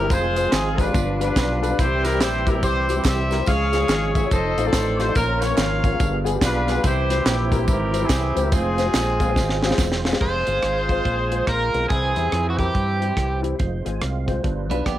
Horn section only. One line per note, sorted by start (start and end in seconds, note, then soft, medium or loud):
0.10 0.79 F4 medium
0.10 0.51 G#4 medium
0.10 0.52 C5 loud
0.52 0.78 G#4 loud
0.79 1.20 D4 medium
0.79 1.20 F4 medium
0.79 1.18 B4 medium
1.20 1.75 D4 medium
1.20 1.75 F4 medium
1.20 1.59 B4 medium
1.62 1.77 B4 medium
1.78 2.59 E4 medium
1.78 2.59 G4 medium
1.78 2.05 C5 loud
2.04 2.20 A#4 loud
2.20 2.46 C5 loud
2.46 2.62 A#4 medium
2.61 3.43 E4 medium
2.61 3.05 G4 medium
2.61 3.01 C5 loud
3.04 3.45 G4 medium
3.04 3.45 C5 medium
3.04 3.47 E5 loud
3.47 4.28 G#4 medium
3.47 4.28 C#5 medium
3.47 3.86 F5 loud
3.88 4.13 F5 medium
4.14 4.31 E5 medium
4.30 4.65 A4 medium
4.30 4.97 C5 medium
4.30 4.65 D#5 loud
4.64 5.13 A4 medium
4.64 4.99 D5 loud
4.98 5.15 C5 medium
5.15 5.96 C#4 medium
5.15 5.96 F4 medium
5.15 5.40 A#4 loud
5.40 5.57 C#5 loud
5.56 6.15 A#4 medium
5.56 6.15 C#5 medium
5.56 6.18 F5 loud
6.41 6.82 D4 medium
6.41 6.82 F4 medium
6.41 6.81 B4 loud
6.82 7.25 E4 medium
6.82 7.24 G4 medium
6.82 7.25 C5 loud
7.25 8.03 C4 medium
7.25 7.68 E4 medium
7.25 7.68 G4 medium
7.67 8.03 E4 medium
7.67 8.36 G4 medium
7.67 8.02 A#4 medium
8.03 8.50 C4 medium
8.03 8.50 E4 medium
8.03 8.37 G#4 medium
8.37 8.53 G4 medium
8.52 9.75 C4 medium
8.52 9.75 F4 medium
8.52 9.79 G#4 loud
10.21 11.44 F4 medium
10.21 11.44 G#4 medium
10.21 11.44 C5 loud
11.49 11.88 F4 medium
11.49 11.88 A#4 medium
11.91 12.58 C4 medium
11.91 12.58 E4 medium
11.91 12.59 G#4 medium
12.59 13.40 C4 soft
12.59 13.40 E4 soft
12.59 13.40 G4 medium